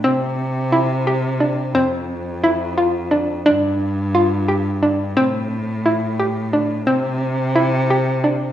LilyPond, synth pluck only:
\new Staff \with { instrumentName = "Synth pluck" } { \time 5/8 \key c \major \tempo 4 = 88 c'4 e'8 g'8 d'8 | c'4 e'8 f'8 d'8 | d'4 f'8 g'8 d'8 | c'4 e'8 g'8 d'8 |
c'4 e'8 g'8 d'8 | }